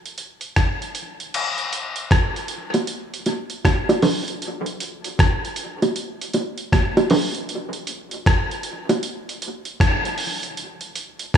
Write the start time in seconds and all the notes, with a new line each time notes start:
0.06 closed hi-hat
0.18 closed hi-hat
0.41 closed hi-hat
0.56 kick, cross-stick, closed hi-hat
0.82 closed hi-hat
0.95 closed hi-hat
1.20 closed hi-hat
1.34 closed hi-hat, crash
1.58 closed hi-hat
1.73 closed hi-hat
1.96 closed hi-hat
2.11 kick, cross-stick, closed hi-hat
2.36 closed hi-hat
2.48 closed hi-hat
2.74 closed hi-hat, high bongo
2.87 closed hi-hat
3.14 closed hi-hat
3.26 closed hi-hat, high bongo
3.50 closed hi-hat
3.65 kick, cross-stick, closed hi-hat, high bongo
3.89 closed hi-hat, high bongo
4.02 open hi-hat, low bongo
4.28 closed hi-hat
4.42 closed hi-hat
4.66 closed hi-hat
4.80 closed hi-hat
5.04 closed hi-hat
5.19 kick, cross-stick, closed hi-hat
5.45 closed hi-hat
5.56 closed hi-hat
5.82 closed hi-hat, high bongo
5.96 closed hi-hat
6.21 closed hi-hat
6.33 closed hi-hat, high bongo
6.58 closed hi-hat
6.72 kick, cross-stick, closed hi-hat, high bongo
6.97 closed hi-hat, high bongo
7.10 open hi-hat, low bongo
7.35 closed hi-hat
7.49 closed hi-hat
7.73 closed hi-hat
7.87 closed hi-hat
8.11 closed hi-hat
8.26 kick, cross-stick, closed hi-hat
8.51 closed hi-hat
8.63 closed hi-hat
8.89 closed hi-hat, high bongo
9.03 closed hi-hat
9.29 closed hi-hat
9.42 closed hi-hat
9.65 closed hi-hat
9.80 kick, cross-stick, closed hi-hat
10.05 closed hi-hat
10.18 open hi-hat
10.43 closed hi-hat
10.57 closed hi-hat
10.81 closed hi-hat
10.95 closed hi-hat
11.19 closed hi-hat
11.34 kick